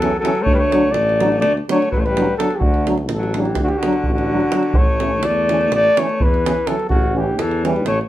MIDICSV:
0, 0, Header, 1, 7, 480
1, 0, Start_track
1, 0, Key_signature, 2, "major"
1, 0, Tempo, 475813
1, 471, Time_signature, 9, 3, 24, 8
1, 8157, End_track
2, 0, Start_track
2, 0, Title_t, "Flugelhorn"
2, 0, Program_c, 0, 56
2, 0, Note_on_c, 0, 69, 102
2, 199, Note_off_c, 0, 69, 0
2, 205, Note_on_c, 0, 69, 93
2, 430, Note_on_c, 0, 73, 92
2, 445, Note_off_c, 0, 69, 0
2, 545, Note_on_c, 0, 71, 88
2, 560, Note_off_c, 0, 73, 0
2, 574, Note_on_c, 0, 73, 93
2, 589, Note_off_c, 0, 71, 0
2, 924, Note_on_c, 0, 74, 109
2, 939, Note_off_c, 0, 73, 0
2, 1408, Note_off_c, 0, 74, 0
2, 1414, Note_on_c, 0, 74, 102
2, 1543, Note_off_c, 0, 74, 0
2, 1724, Note_on_c, 0, 73, 100
2, 1927, Note_off_c, 0, 73, 0
2, 1933, Note_on_c, 0, 71, 85
2, 2019, Note_on_c, 0, 73, 75
2, 2034, Note_off_c, 0, 71, 0
2, 2067, Note_on_c, 0, 71, 107
2, 2082, Note_off_c, 0, 73, 0
2, 2389, Note_off_c, 0, 71, 0
2, 2395, Note_on_c, 0, 69, 95
2, 2580, Note_on_c, 0, 67, 65
2, 2595, Note_off_c, 0, 69, 0
2, 2613, Note_on_c, 0, 66, 85
2, 2628, Note_off_c, 0, 67, 0
2, 2889, Note_off_c, 0, 66, 0
2, 3166, Note_on_c, 0, 69, 76
2, 3431, Note_on_c, 0, 67, 66
2, 3447, Note_off_c, 0, 69, 0
2, 3636, Note_off_c, 0, 67, 0
2, 3666, Note_on_c, 0, 66, 97
2, 3700, Note_on_c, 0, 67, 78
2, 3715, Note_off_c, 0, 66, 0
2, 3797, Note_on_c, 0, 66, 82
2, 3812, Note_off_c, 0, 67, 0
2, 4110, Note_off_c, 0, 66, 0
2, 4116, Note_on_c, 0, 66, 86
2, 4809, Note_on_c, 0, 73, 98
2, 4824, Note_off_c, 0, 66, 0
2, 5298, Note_on_c, 0, 74, 97
2, 5313, Note_off_c, 0, 73, 0
2, 5783, Note_off_c, 0, 74, 0
2, 5803, Note_on_c, 0, 74, 115
2, 6042, Note_on_c, 0, 73, 90
2, 6057, Note_off_c, 0, 74, 0
2, 6274, Note_on_c, 0, 71, 89
2, 6289, Note_off_c, 0, 73, 0
2, 6732, Note_on_c, 0, 69, 84
2, 6747, Note_off_c, 0, 71, 0
2, 6948, Note_off_c, 0, 69, 0
2, 6954, Note_on_c, 0, 66, 98
2, 7243, Note_on_c, 0, 67, 84
2, 7259, Note_off_c, 0, 66, 0
2, 7458, Note_on_c, 0, 69, 86
2, 7473, Note_off_c, 0, 67, 0
2, 7715, Note_off_c, 0, 69, 0
2, 7721, Note_on_c, 0, 71, 67
2, 7925, Note_off_c, 0, 71, 0
2, 7946, Note_on_c, 0, 73, 96
2, 8063, Note_off_c, 0, 73, 0
2, 8157, End_track
3, 0, Start_track
3, 0, Title_t, "French horn"
3, 0, Program_c, 1, 60
3, 16, Note_on_c, 1, 61, 64
3, 107, Note_off_c, 1, 61, 0
3, 240, Note_on_c, 1, 61, 72
3, 330, Note_off_c, 1, 61, 0
3, 736, Note_on_c, 1, 62, 69
3, 826, Note_off_c, 1, 62, 0
3, 1229, Note_on_c, 1, 62, 62
3, 1319, Note_off_c, 1, 62, 0
3, 1720, Note_on_c, 1, 62, 81
3, 1810, Note_off_c, 1, 62, 0
3, 2183, Note_on_c, 1, 62, 58
3, 2273, Note_off_c, 1, 62, 0
3, 2411, Note_on_c, 1, 62, 54
3, 2499, Note_off_c, 1, 62, 0
3, 2886, Note_on_c, 1, 62, 67
3, 2978, Note_off_c, 1, 62, 0
3, 3379, Note_on_c, 1, 62, 53
3, 3471, Note_off_c, 1, 62, 0
3, 3879, Note_on_c, 1, 62, 60
3, 3970, Note_off_c, 1, 62, 0
3, 4365, Note_on_c, 1, 62, 51
3, 4451, Note_off_c, 1, 62, 0
3, 4566, Note_on_c, 1, 62, 48
3, 4655, Note_off_c, 1, 62, 0
3, 5062, Note_on_c, 1, 61, 54
3, 5152, Note_off_c, 1, 61, 0
3, 5541, Note_on_c, 1, 61, 55
3, 5633, Note_off_c, 1, 61, 0
3, 6034, Note_on_c, 1, 61, 62
3, 6126, Note_off_c, 1, 61, 0
3, 6510, Note_on_c, 1, 61, 59
3, 6599, Note_off_c, 1, 61, 0
3, 6731, Note_on_c, 1, 61, 55
3, 6820, Note_off_c, 1, 61, 0
3, 7214, Note_on_c, 1, 61, 64
3, 7305, Note_off_c, 1, 61, 0
3, 7698, Note_on_c, 1, 61, 62
3, 7790, Note_off_c, 1, 61, 0
3, 8157, End_track
4, 0, Start_track
4, 0, Title_t, "Alto saxophone"
4, 0, Program_c, 2, 65
4, 0, Note_on_c, 2, 54, 80
4, 189, Note_off_c, 2, 54, 0
4, 195, Note_on_c, 2, 54, 78
4, 421, Note_on_c, 2, 57, 99
4, 436, Note_off_c, 2, 54, 0
4, 541, Note_on_c, 2, 55, 77
4, 556, Note_off_c, 2, 57, 0
4, 596, Note_on_c, 2, 57, 86
4, 611, Note_off_c, 2, 55, 0
4, 915, Note_off_c, 2, 57, 0
4, 915, Note_on_c, 2, 57, 88
4, 1409, Note_off_c, 2, 57, 0
4, 1415, Note_on_c, 2, 57, 90
4, 1543, Note_off_c, 2, 57, 0
4, 1691, Note_on_c, 2, 57, 75
4, 1914, Note_off_c, 2, 57, 0
4, 1921, Note_on_c, 2, 54, 82
4, 1995, Note_on_c, 2, 57, 66
4, 2011, Note_off_c, 2, 54, 0
4, 2074, Note_on_c, 2, 55, 82
4, 2089, Note_off_c, 2, 57, 0
4, 2398, Note_off_c, 2, 55, 0
4, 2404, Note_on_c, 2, 54, 61
4, 2592, Note_on_c, 2, 52, 59
4, 2607, Note_off_c, 2, 54, 0
4, 2650, Note_on_c, 2, 50, 72
4, 2665, Note_off_c, 2, 52, 0
4, 2908, Note_off_c, 2, 50, 0
4, 3183, Note_on_c, 2, 54, 79
4, 3436, Note_on_c, 2, 52, 67
4, 3451, Note_off_c, 2, 54, 0
4, 3639, Note_off_c, 2, 52, 0
4, 3668, Note_on_c, 2, 50, 72
4, 3718, Note_on_c, 2, 52, 59
4, 3733, Note_off_c, 2, 50, 0
4, 3799, Note_on_c, 2, 50, 85
4, 3814, Note_off_c, 2, 52, 0
4, 4120, Note_off_c, 2, 50, 0
4, 4158, Note_on_c, 2, 50, 79
4, 4816, Note_on_c, 2, 57, 81
4, 4831, Note_off_c, 2, 50, 0
4, 5315, Note_off_c, 2, 57, 0
4, 5315, Note_on_c, 2, 57, 103
4, 5792, Note_off_c, 2, 57, 0
4, 5800, Note_on_c, 2, 57, 85
4, 6079, Note_off_c, 2, 57, 0
4, 6079, Note_on_c, 2, 57, 74
4, 6296, Note_on_c, 2, 52, 86
4, 6311, Note_off_c, 2, 57, 0
4, 6746, Note_on_c, 2, 54, 66
4, 6761, Note_off_c, 2, 52, 0
4, 6945, Note_off_c, 2, 54, 0
4, 6952, Note_on_c, 2, 49, 65
4, 7223, Note_on_c, 2, 52, 70
4, 7238, Note_off_c, 2, 49, 0
4, 7429, Note_off_c, 2, 52, 0
4, 7429, Note_on_c, 2, 52, 89
4, 7703, Note_off_c, 2, 52, 0
4, 7721, Note_on_c, 2, 55, 69
4, 7926, Note_off_c, 2, 55, 0
4, 7934, Note_on_c, 2, 57, 76
4, 8054, Note_off_c, 2, 57, 0
4, 8157, End_track
5, 0, Start_track
5, 0, Title_t, "Euphonium"
5, 0, Program_c, 3, 58
5, 27, Note_on_c, 3, 52, 64
5, 116, Note_off_c, 3, 52, 0
5, 245, Note_on_c, 3, 52, 66
5, 334, Note_off_c, 3, 52, 0
5, 737, Note_on_c, 3, 54, 66
5, 827, Note_off_c, 3, 54, 0
5, 1206, Note_on_c, 3, 54, 72
5, 1301, Note_off_c, 3, 54, 0
5, 1707, Note_on_c, 3, 54, 67
5, 1800, Note_off_c, 3, 54, 0
5, 2196, Note_on_c, 3, 54, 67
5, 2283, Note_off_c, 3, 54, 0
5, 2422, Note_on_c, 3, 54, 51
5, 2508, Note_off_c, 3, 54, 0
5, 2898, Note_on_c, 3, 54, 60
5, 2988, Note_off_c, 3, 54, 0
5, 3407, Note_on_c, 3, 54, 58
5, 3494, Note_off_c, 3, 54, 0
5, 3884, Note_on_c, 3, 54, 65
5, 3974, Note_off_c, 3, 54, 0
5, 4364, Note_on_c, 3, 54, 54
5, 4450, Note_off_c, 3, 54, 0
5, 4579, Note_on_c, 3, 54, 54
5, 4665, Note_off_c, 3, 54, 0
5, 5061, Note_on_c, 3, 52, 50
5, 5151, Note_off_c, 3, 52, 0
5, 5547, Note_on_c, 3, 52, 57
5, 5638, Note_off_c, 3, 52, 0
5, 6038, Note_on_c, 3, 52, 71
5, 6129, Note_off_c, 3, 52, 0
5, 6522, Note_on_c, 3, 52, 58
5, 6609, Note_off_c, 3, 52, 0
5, 6732, Note_on_c, 3, 52, 59
5, 6820, Note_off_c, 3, 52, 0
5, 7216, Note_on_c, 3, 52, 61
5, 7307, Note_off_c, 3, 52, 0
5, 7722, Note_on_c, 3, 52, 72
5, 7810, Note_off_c, 3, 52, 0
5, 8157, End_track
6, 0, Start_track
6, 0, Title_t, "Tuba"
6, 0, Program_c, 4, 58
6, 0, Note_on_c, 4, 40, 95
6, 164, Note_off_c, 4, 40, 0
6, 459, Note_on_c, 4, 38, 94
6, 963, Note_on_c, 4, 33, 111
6, 978, Note_off_c, 4, 38, 0
6, 1458, Note_on_c, 4, 38, 96
6, 1473, Note_off_c, 4, 33, 0
6, 1603, Note_off_c, 4, 38, 0
6, 1955, Note_on_c, 4, 33, 89
6, 2330, Note_off_c, 4, 33, 0
6, 2636, Note_on_c, 4, 38, 103
6, 3121, Note_on_c, 4, 33, 96
6, 3136, Note_off_c, 4, 38, 0
6, 3610, Note_on_c, 4, 38, 93
6, 3625, Note_off_c, 4, 33, 0
6, 3758, Note_off_c, 4, 38, 0
6, 4095, Note_on_c, 4, 33, 91
6, 4476, Note_off_c, 4, 33, 0
6, 4793, Note_on_c, 4, 33, 85
6, 5281, Note_on_c, 4, 40, 96
6, 5296, Note_off_c, 4, 33, 0
6, 5780, Note_on_c, 4, 33, 86
6, 5796, Note_off_c, 4, 40, 0
6, 5926, Note_off_c, 4, 33, 0
6, 6257, Note_on_c, 4, 40, 90
6, 6638, Note_off_c, 4, 40, 0
6, 6951, Note_on_c, 4, 33, 97
6, 7426, Note_on_c, 4, 40, 97
6, 7441, Note_off_c, 4, 33, 0
6, 7928, Note_on_c, 4, 33, 97
6, 7943, Note_off_c, 4, 40, 0
6, 8076, Note_off_c, 4, 33, 0
6, 8157, End_track
7, 0, Start_track
7, 0, Title_t, "Davul"
7, 21, Note_on_c, 9, 37, 60
7, 122, Note_off_c, 9, 37, 0
7, 251, Note_on_c, 9, 37, 69
7, 352, Note_off_c, 9, 37, 0
7, 354, Note_on_c, 9, 37, 23
7, 455, Note_off_c, 9, 37, 0
7, 466, Note_on_c, 9, 43, 78
7, 567, Note_off_c, 9, 43, 0
7, 730, Note_on_c, 9, 37, 61
7, 830, Note_off_c, 9, 37, 0
7, 952, Note_on_c, 9, 37, 59
7, 1053, Note_off_c, 9, 37, 0
7, 1102, Note_on_c, 9, 37, 24
7, 1202, Note_off_c, 9, 37, 0
7, 1216, Note_on_c, 9, 37, 59
7, 1316, Note_off_c, 9, 37, 0
7, 1331, Note_on_c, 9, 37, 21
7, 1431, Note_off_c, 9, 37, 0
7, 1435, Note_on_c, 9, 37, 58
7, 1536, Note_off_c, 9, 37, 0
7, 1587, Note_on_c, 9, 37, 21
7, 1688, Note_off_c, 9, 37, 0
7, 1708, Note_on_c, 9, 37, 69
7, 1809, Note_off_c, 9, 37, 0
7, 1839, Note_on_c, 9, 37, 27
7, 1940, Note_off_c, 9, 37, 0
7, 1940, Note_on_c, 9, 43, 65
7, 2041, Note_off_c, 9, 43, 0
7, 2076, Note_on_c, 9, 37, 25
7, 2177, Note_off_c, 9, 37, 0
7, 2188, Note_on_c, 9, 37, 63
7, 2289, Note_off_c, 9, 37, 0
7, 2421, Note_on_c, 9, 37, 68
7, 2521, Note_off_c, 9, 37, 0
7, 2527, Note_on_c, 9, 37, 26
7, 2628, Note_off_c, 9, 37, 0
7, 2633, Note_on_c, 9, 43, 83
7, 2734, Note_off_c, 9, 43, 0
7, 2765, Note_on_c, 9, 37, 25
7, 2865, Note_off_c, 9, 37, 0
7, 2894, Note_on_c, 9, 37, 57
7, 2995, Note_off_c, 9, 37, 0
7, 3002, Note_on_c, 9, 37, 27
7, 3103, Note_off_c, 9, 37, 0
7, 3115, Note_on_c, 9, 37, 62
7, 3216, Note_off_c, 9, 37, 0
7, 3259, Note_on_c, 9, 37, 22
7, 3360, Note_off_c, 9, 37, 0
7, 3371, Note_on_c, 9, 37, 60
7, 3472, Note_off_c, 9, 37, 0
7, 3484, Note_on_c, 9, 37, 22
7, 3584, Note_off_c, 9, 37, 0
7, 3585, Note_on_c, 9, 37, 60
7, 3585, Note_on_c, 9, 43, 56
7, 3686, Note_off_c, 9, 37, 0
7, 3686, Note_off_c, 9, 43, 0
7, 3717, Note_on_c, 9, 37, 22
7, 3818, Note_off_c, 9, 37, 0
7, 3861, Note_on_c, 9, 37, 66
7, 3962, Note_off_c, 9, 37, 0
7, 3962, Note_on_c, 9, 37, 27
7, 4063, Note_off_c, 9, 37, 0
7, 4071, Note_on_c, 9, 43, 61
7, 4172, Note_off_c, 9, 43, 0
7, 4219, Note_on_c, 9, 37, 27
7, 4320, Note_off_c, 9, 37, 0
7, 4443, Note_on_c, 9, 37, 19
7, 4543, Note_off_c, 9, 37, 0
7, 4558, Note_on_c, 9, 37, 73
7, 4658, Note_off_c, 9, 37, 0
7, 4668, Note_on_c, 9, 37, 27
7, 4769, Note_off_c, 9, 37, 0
7, 4777, Note_on_c, 9, 43, 97
7, 4878, Note_off_c, 9, 43, 0
7, 5045, Note_on_c, 9, 37, 58
7, 5146, Note_off_c, 9, 37, 0
7, 5273, Note_on_c, 9, 37, 71
7, 5374, Note_off_c, 9, 37, 0
7, 5541, Note_on_c, 9, 37, 62
7, 5642, Note_off_c, 9, 37, 0
7, 5659, Note_on_c, 9, 37, 24
7, 5760, Note_off_c, 9, 37, 0
7, 5769, Note_on_c, 9, 37, 64
7, 5870, Note_off_c, 9, 37, 0
7, 5890, Note_on_c, 9, 37, 22
7, 5991, Note_off_c, 9, 37, 0
7, 6025, Note_on_c, 9, 37, 74
7, 6126, Note_off_c, 9, 37, 0
7, 6146, Note_on_c, 9, 37, 22
7, 6247, Note_off_c, 9, 37, 0
7, 6257, Note_on_c, 9, 43, 88
7, 6358, Note_off_c, 9, 43, 0
7, 6396, Note_on_c, 9, 37, 26
7, 6497, Note_off_c, 9, 37, 0
7, 6521, Note_on_c, 9, 37, 80
7, 6622, Note_off_c, 9, 37, 0
7, 6731, Note_on_c, 9, 37, 70
7, 6832, Note_off_c, 9, 37, 0
7, 6854, Note_on_c, 9, 37, 29
7, 6955, Note_off_c, 9, 37, 0
7, 6963, Note_on_c, 9, 43, 85
7, 7064, Note_off_c, 9, 43, 0
7, 7454, Note_on_c, 9, 37, 70
7, 7555, Note_off_c, 9, 37, 0
7, 7580, Note_on_c, 9, 37, 26
7, 7681, Note_off_c, 9, 37, 0
7, 7717, Note_on_c, 9, 37, 62
7, 7818, Note_off_c, 9, 37, 0
7, 7830, Note_on_c, 9, 37, 22
7, 7928, Note_off_c, 9, 37, 0
7, 7928, Note_on_c, 9, 37, 66
7, 8029, Note_off_c, 9, 37, 0
7, 8080, Note_on_c, 9, 37, 19
7, 8157, Note_off_c, 9, 37, 0
7, 8157, End_track
0, 0, End_of_file